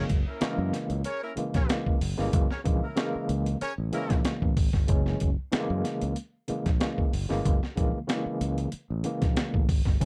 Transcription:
Already playing: tine electric piano C#3 E3 G#3 A#3
0.09 fingered electric bass F#1, kick, closed hi-hat
0.28 horn section A#3 C#4 E4 A#4
0.41 tine electric piano C#3 E3 G#3 A#3, muted fingered electric bass stroke, snare, closed hi-hat
0.58 fingered electric bass F#2
0.73 snare, closed hi-hat
0.90 fingered electric bass C#2, closed hi-hat
1.04 horn section C#4 G#4 A#4 C#5, closed hi-hat
1.23 horn section A#3 C#4 E4 A#4
1.36 tine electric piano C#3 E3 G#3 A#3, muted fingered electric bass stroke, closed hi-hat
1.54 fingered electric bass A#1, horn section C#4 G#4 A#4 C#5, kick, snare, closed hi-hat
1.68 tine electric piano C#3 E3 G#3 A#3, snare, closed hi-hat
1.86 kick
2.01 fingered electric bass F#1, open hi-hat
2.17 fingered electric bass G1, tine electric piano C#3 E3 G#3 A#3, snare
2.33 fingered electric bass F#1, kick, closed hi-hat
2.51 horn section C#4 G#4 A#4 C#5, snare
2.64 fingered electric bass A#1, tine electric piano C#3 E3 G#3 A#3, kick, closed hi-hat
2.83 horn section A#3 C#4 E4 A#4
2.96 tine electric piano C#3 E3 G#3 A#3, snare, closed hi-hat
3.15 muted fingered electric bass stroke
3.29 fingered electric bass C#2, closed hi-hat
3.46 closed hi-hat
3.61 horn section C#4 G#4 A#4 C#5, muted fingered electric bass stroke, closed hi-hat
3.78 fingered electric bass A1
3.92 tine electric piano C#3 E3 G#3 A#3, horn section A#3 C#4 E4 A#4, closed hi-hat
4.10 fingered electric bass A#1, kick, snare, closed hi-hat
4.25 snare, closed hi-hat
4.42 fingered electric bass A1, kick
4.57 fingered electric bass G#1, kick, open hi-hat
4.73 fingered electric bass G1, kick, snare
4.87 fingered electric bass F#1, tine electric piano C#3 E3 G#3 C#4, kick, closed hi-hat
5.06 snare
5.20 fingered electric bass F#1, kick, closed hi-hat
5.52 tine electric piano C#3 E3 G#3 A3, muted fingered electric bass stroke, snare, closed hi-hat
5.60 tine electric piano A#3
5.70 fingered electric bass F#2
5.85 snare, closed hi-hat
6.01 fingered electric bass C#2, closed hi-hat
6.16 closed hi-hat
6.48 tine electric piano C#3 E3 G#3 A#3, muted fingered electric bass stroke, closed hi-hat
6.66 fingered electric bass A#1, kick, snare, closed hi-hat
6.80 tine electric piano C#3 E3 G#3 A#3, snare, closed hi-hat
6.98 kick
7.13 fingered electric bass F#1, open hi-hat
7.29 fingered electric bass G1, tine electric piano C#3 E3 G#3 A#3, snare
7.45 fingered electric bass F#1, kick, closed hi-hat
7.63 snare
7.76 fingered electric bass A#1, tine electric piano C#3 E3 G#3 A#3, kick, closed hi-hat
8.07 tine electric piano C#3 E3 G#3 A#3, snare, closed hi-hat
8.26 muted fingered electric bass stroke
8.41 fingered electric bass C#2, closed hi-hat
8.58 closed hi-hat
8.72 muted fingered electric bass stroke, closed hi-hat
8.90 fingered electric bass A1
9.04 tine electric piano C#3 E3 G#3 A#3, closed hi-hat
9.22 fingered electric bass A#1, kick, snare, closed hi-hat
9.36 snare, closed hi-hat
9.54 fingered electric bass A1, kick
9.68 fingered electric bass G#1, kick, open hi-hat
9.85 fingered electric bass G1, kick, snare
10.00 fingered electric bass F#1, tine electric piano C#3 E3 G#3 C#4, kick, closed hi-hat

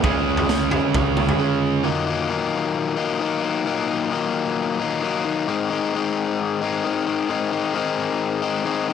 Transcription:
0.02 picked electric bass C#2, overdriven electric guitar C#3 G#3 C#4, kick, floor tom
0.37 floor tom
0.49 snare, mid tom
0.70 overdriven electric guitar C#3 G#3 C#4, floor tom
0.94 picked electric bass C#2, kick, floor tom
1.17 mid tom
1.29 floor tom
1.39 overdriven electric guitar C#3 G#3 C#4
1.83 overdriven electric guitar D#2 A#2 D#3 F#3 A#3 D#4
2.07 overdriven electric guitar D#3 F#3 A#3 D#4
2.29 overdriven electric guitar D#2 A#2 D#3 F#3 A#3 D#4
2.97 overdriven electric guitar D#3 F#3 A#3 D#4
3.20 overdriven electric guitar D#3 F#3 A#3 D#4
3.42 overdriven electric guitar D#3 F#3 A#3 D#4
3.65 overdriven electric guitar D#2 A#2 D#3 F#3 A#3 D#4
3.88 overdriven electric guitar D#3 F#3 A#3 D#4
4.11 overdriven electric guitar D#2 A#2 D#3 F#3 A#3 D#4
4.80 overdriven electric guitar D#3 F#3 A#3 D#4
5.02 overdriven electric guitar D#3 F#3 A#3 D#4
5.25 overdriven electric guitar D#3 F#3 A#3 D#4
5.48 overdriven electric guitar G#2 D#3 G#3 C4 D#4
5.70 overdriven electric guitar G#3 C4 D#4
5.93 overdriven electric guitar G#2 D#3 G#3 C4 D#4
6.62 overdriven electric guitar G#3 C4 D#4
6.84 overdriven electric guitar D#3 G#3 C4 D#4
7.07 overdriven electric guitar G#3 C4 D#4
7.29 overdriven electric guitar G#2 D#3 G#3 C4 D#4
7.51 overdriven electric guitar G#3 C4 D#4
7.74 overdriven electric guitar G#2 D#3 G#3 C4 D#4
8.42 overdriven electric guitar G#3 C4 D#4
8.64 overdriven electric guitar D#3 G#3 C4 D#4
8.88 overdriven electric guitar C4 D#4

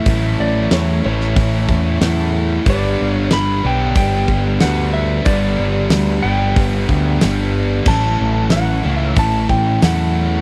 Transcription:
Already playing: electric slide guitar E5
0.05 picked electric bass A1, distorted electric guitar A2 E3 A3 C#4, steel-string acoustic guitar A2 F#3 A3 E4, kick, open hi-hat
0.09 distorted electric guitar E4, steel-string acoustic guitar A4
0.39 picked electric bass A1, electric slide guitar D5
0.71 picked electric bass E2, steel-string acoustic guitar A2 F#3 A3 C#4 E4 A4, electric slide guitar C#5, snare, open hi-hat
1.04 picked electric bass A1, distorted electric guitar A2 E3 A3 C#4 E4, steel-string acoustic guitar A3 C#4 E4 A4, electric slide guitar C#5
1.21 snare
1.35 picked electric bass A1, steel-string acoustic guitar A3 C#4 E4 A4, kick, open hi-hat
1.68 picked electric bass E2, steel-string acoustic guitar A3 C#4 E4 A4, kick
2.01 picked electric bass E2, steel-string acoustic guitar A2 F#3 A3 C#4 E4 A4, snare, open hi-hat
2.65 picked electric bass G1, distorted electric guitar G2 D3 G3 B3, steel-string acoustic guitar G3 D4 G4 B4, kick, open hi-hat
2.69 distorted electric guitar D4, electric slide guitar D5
3.01 picked electric bass G1
3.12 electric slide guitar C#5
3.31 picked electric bass G1, steel-string acoustic guitar G3 D4 G4 B4, electric slide guitar B5, snare, open hi-hat
3.63 picked electric bass B1, distorted electric guitar G2 D3 G3 B3 D4, steel-string acoustic guitar D4 G4 B4, electric slide guitar G5
3.67 distorted electric guitar G3
3.95 picked electric bass G1, steel-string acoustic guitar G3 D4 G4, electric slide guitar G5, kick, open hi-hat
4.00 steel-string acoustic guitar B4
4.28 picked electric bass G1, steel-string acoustic guitar D4 G4 B4, kick
4.60 picked electric bass D2, steel-string acoustic guitar G3 D4 G4 B4, distorted electric guitar B3, electric slide guitar F#5, snare, open hi-hat
4.93 electric slide guitar E5
5.25 picked electric bass G1, distorted electric guitar G2 D3 G3 B3 D4, steel-string acoustic guitar G3 D4 G4 B4, electric slide guitar D5, kick, open hi-hat
5.59 picked electric bass G1
5.90 picked electric bass D2, steel-string acoustic guitar G3 D4 G4, snare, open hi-hat
5.94 steel-string acoustic guitar B4
6.23 picked electric bass G1, distorted electric guitar D3 G3 B3 D4, steel-string acoustic guitar D4 G4 B4, electric slide guitar G5
6.27 distorted electric guitar G2 G3
6.56 picked electric bass G1, steel-string acoustic guitar G3 D4 G4 B4, kick, open hi-hat
6.88 picked electric bass D2, steel-string acoustic guitar D4 G4 B4, kick
7.21 picked electric bass G1, steel-string acoustic guitar G3 D4 G4 B4, distorted electric guitar B3, snare, open hi-hat
7.85 picked electric bass A1, distorted electric guitar A2 E3 A3 C#4, steel-string acoustic guitar A2 F#3 A3 C#4 A4, electric slide guitar A5, kick, crash
7.89 steel-string acoustic guitar E4, distorted electric guitar E4
8.21 picked electric bass A1
8.50 picked electric bass A1, steel-string acoustic guitar A2 F#3 A3 C#4 E4 A4, electric slide guitar F#5, snare, open hi-hat
8.82 picked electric bass C#2, distorted electric guitar E3 A3 C#4 E4, steel-string acoustic guitar A3 C#4 E4 A4
8.87 distorted electric guitar A2
8.98 electric slide guitar E5
9.16 picked electric bass A1, steel-string acoustic guitar A3 C#4 E4, electric slide guitar A5, kick, open hi-hat
9.20 steel-string acoustic guitar A4
9.48 picked electric bass A1, steel-string acoustic guitar A3 C#4 E4 A4, electric slide guitar G5, kick
9.81 picked electric bass E2, steel-string acoustic guitar A2 F#3 A3 C#4 E4 A4, electric slide guitar F#5, snare, open hi-hat

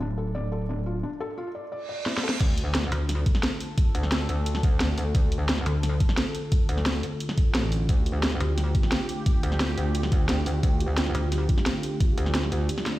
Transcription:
Already playing: wobble bass D1
0.00 felt piano D4
0.18 felt piano A4
0.35 felt piano D5
0.52 felt piano A4
0.69 felt piano D4
0.86 felt piano F4
1.03 felt piano D4
1.20 felt piano A4
1.38 felt piano F4
1.55 felt piano D5
1.72 felt piano D5, reverse cymbal
1.89 felt piano D5
2.06 felt piano E4, snare
2.18 snare
2.23 felt piano A4
2.29 snare
2.40 wobble bass D2, analog synth pad D3 A3 F4 A4, kick, closed hi-hat, crash
2.58 closed hi-hat
2.75 snare, closed hi-hat
2.83 snare
2.92 wobble bass D2, closed hi-hat
3.09 snare, closed hi-hat
3.26 kick, closed hi-hat
3.35 snare
3.43 snare, closed hi-hat
3.60 open hi-hat
3.78 kick, closed hi-hat
3.95 wobble bass D2, closed hi-hat
4.03 snare
4.12 snare, closed hi-hat
4.29 wobble bass D2, closed hi-hat
4.46 closed hi-hat
4.55 snare
4.63 kick, closed hi-hat
4.80 wobble bass D2, snare, closed hi-hat
4.98 open hi-hat
5.15 wobble bass D2, kick, closed hi-hat
5.32 closed hi-hat
5.49 snare, closed hi-hat
5.58 snare
5.66 wobble bass D2, closed hi-hat
5.83 snare, closed hi-hat
6.00 kick, closed hi-hat
6.09 snare
6.18 snare, closed hi-hat
6.35 open hi-hat
6.52 kick, closed hi-hat
6.69 wobble bass D2, closed hi-hat
6.78 snare
6.86 snare, closed hi-hat
7.03 closed hi-hat
7.20 closed hi-hat
7.29 snare
7.38 kick, closed hi-hat
7.55 wobble bass A1, snare, closed hi-hat
7.72 open hi-hat
7.89 wobble bass D2, analog synth pad G4, kick, closed hi-hat
8.06 closed hi-hat
8.23 snare, closed hi-hat
8.32 snare
8.40 wobble bass D2, closed hi-hat
8.58 snare, closed hi-hat
8.75 kick, closed hi-hat
8.83 snare
8.92 snare, closed hi-hat
9.09 open hi-hat
9.26 kick, closed hi-hat
9.43 wobble bass D2, closed hi-hat
9.52 snare
9.60 snare, closed hi-hat
9.78 wobble bass D2, closed hi-hat
9.95 closed hi-hat
10.03 snare
10.12 kick, closed hi-hat
10.29 wobble bass D2, snare, closed hi-hat
10.46 open hi-hat
10.63 wobble bass D2, kick, closed hi-hat
10.80 closed hi-hat
10.98 snare, closed hi-hat
11.06 snare
11.15 wobble bass D2, closed hi-hat
11.32 snare, closed hi-hat
11.49 kick, closed hi-hat
11.58 snare
11.66 snare, closed hi-hat
11.83 open hi-hat
12.00 kick, closed hi-hat
12.18 wobble bass D2, closed hi-hat
12.26 snare
12.35 snare, closed hi-hat
12.43 snare
12.52 wobble bass D2, closed hi-hat
12.69 closed hi-hat, swell
12.78 snare
12.86 snare, closed hi-hat

